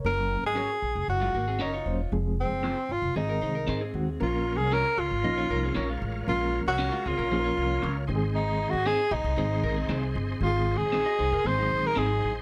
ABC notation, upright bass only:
X:1
M:4/4
L:1/16
Q:1/4=116
K:Bbm
V:1 name="Upright bass" clef=bass
G,,,3 A,,,2 z B,,, F,,, G,,,2 A,,,2 G,,,2 =E,,,2 | F,,,3 G,,,2 z A,,, F,,, A,,,2 C,,2 A,,2 E,,2 | B,,,3 C,,2 z D,, A,,, B,,,2 C,,2 B,,,2 =A,,,2 | B,,,3 C,,2 z D,, B,,,3 C,,2 D,,2 A,,,2- |
A,,,3 A,,,2 z B,,, C,, A,,,2 B,,,2 C,,2 =G,,,2 | A,,,3 B,,,2 z C,, G,,, A,,,2 B,,,2 A,,,2 =A,,,2 |]